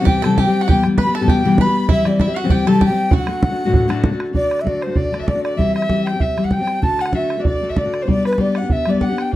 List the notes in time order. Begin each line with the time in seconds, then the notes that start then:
0.00 C3 E3 G3 C4 G4
0.05 G4 G5, bodhran
0.22 C3 E3 G3 C4 G4 A4 A5, bodhran
0.38 G4 G5, bodhran
0.46 G3 C4 G4
0.61 F#4 F#5
0.68 E3 G3 B3 G4 G5, bodhran
0.84 E3 G3 B3 G4, bodhran
0.98 B4 B5, bodhran
1.06 G3 B3 G4
1.14 A4 A5
1.21 B2 E3 G3 B3 G4
1.28 G4 G5, bodhran
1.44 B2 E3 G3 B3 G4
1.58 B4 B5, bodhran
1.67 G3 B3 G4
1.89 E3 G3 C4 E4 G4 E5, bodhran
2.04 E3 G3 C4 G4 D5, bodhran
2.19 E4 E5, bodhran
2.25 C4 G4 E5
2.29 G3
2.36 F#4 F#5
2.44 C3 E3 G3 C4 G4
2.50 G4 G5, bodhran
2.54 G5
2.67 C3 E3 G3 C4 G4 A4 A5, bodhran
2.72 A5
2.81 G4 G5, bodhran
2.86 G4 G5
2.91 G3 C4
3.11 D3 A3 D4 F#4 F#5, bodhran
3.19 F#5
3.27 D3 A3 D4 F#4, bodhran
3.43 bodhran
3.50 D3 A3 D4 F#4
3.65 D2 A2 D3 A3 D4 F#4
3.74 bodhran
3.88 D2 A2 D3 A3 D4 F#4, bodhran
4.04 bodhran
4.11 D3 A3 D4 F#4
4.20 bodhran
4.33 D3 A3 D4 F#4 D5, bodhran
4.43 bodhran
4.51 bodhran
4.59 E5, bodhran
4.64 D3 A3 D4 F#4 D5, bodhran
4.68 D5
4.82 C5, bodhran
4.87 D3 A3 D4 F#4
4.96 D5, bodhran
5.05 bodhran
5.11 D3 A3 D4 F#4, bodhran
5.20 E5, bodhran
5.27 D5, bodhran
5.34 D3 A3 D4 F#4
5.43 D5, bodhran
5.57 E3 G3 C4 G4 E5, bodhran
5.67 bodhran
5.75 E5, bodhran
5.82 bodhran
5.89 E3 G3 C4 G4, bodhran
6.04 G5, bodhran
6.13 G3 C4 G4
6.20 E5, bodhran
6.28 bodhran
6.36 E3 G3 C4 G4, bodhran
6.44 F#5, bodhran
6.51 G5, bodhran
6.59 G3 C4 G4 G5
6.67 bodhran
6.73 G5
6.81 D3 A3 D4 F#4 A5, bodhran
6.92 bodhran
6.99 F#5, bodhran
7.06 bodhran
7.13 D3 A3 D4 F#4 E5, bodhran
7.30 bodhran
7.38 D3 A3 D4 F#4 D5
7.45 D5, bodhran
7.54 bodhran
7.62 D3 A3 D4 F#4
7.69 E5, bodhran
7.76 D5, bodhran
7.84 D3 A3 D4 F#4
7.94 bodhran
8.02 C5
8.06 G3 B3 D4 G4 D5, bodhran
8.17 bodhran
8.25 B4, bodhran
8.33 bodhran
8.37 G3 B3 D4 G4 D5, bodhran
8.41 D5
8.55 F#5, bodhran
8.61 B3 D4 G4
8.70 E5, bodhran
8.78 bodhran
8.86 G3 B3 D4 G4 D5, bodhran
8.90 D5, bodhran
9.01 F#5 G5, bodhran
9.05 G4 F#5
9.11 B3 D4
9.18 G5, bodhran
9.32 G3 D5